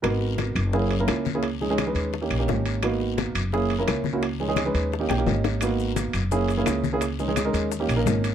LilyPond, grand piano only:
\new Staff \with { instrumentName = "Grand piano" } { \time 4/4 \key gis \minor \tempo 4 = 172 << { r1 | r1 | r1 | r2 r8 g''8 dis''4 |
r1 | r1 | } \\ { <b dis' fis' ais'>4. r8 <ais cis' e' gis'>8 r16 <ais cis' e' ais'>8. r16 <ais cis' e' gis'>16 | r8 <gis cis' dis' gis'>16 <gis cis' dis' gis'>16 r16 <gis cis' dis' b'>8. r16 <ais cis' dis' g'>16 r16 <ais cis' dis' g'>4~ <ais cis' dis' g'>16 | <ais b dis' fis'>4. r8 <ais cis' e' gis'>8 r16 <ais cis' e' ais'>8. r16 <ais cis' e' fis'>16 | r8 <gis cis' dis' gis'>16 <gis cis' dis' gis'>16 r16 <gis cis' dis' b'>8. r16 <ais cis' dis' g'>16 r16 <ais cis' dis' g'>4~ <ais cis' dis' g'>16 |
<ais b dis' fis'>4. r8 <ais cis' e' gis'>8 r16 <ais cis' e' gis'>8. r16 <ais cis' e' gis'>16 | r8 <gis cis' dis' gis'>16 <gis cis' dis' gis'>16 r16 <gis cis' dis' ais'>8. r16 <ais cis' dis' g'>16 r16 <ais cis' dis' ais'>4~ <ais cis' dis' ais'>16 | } >> }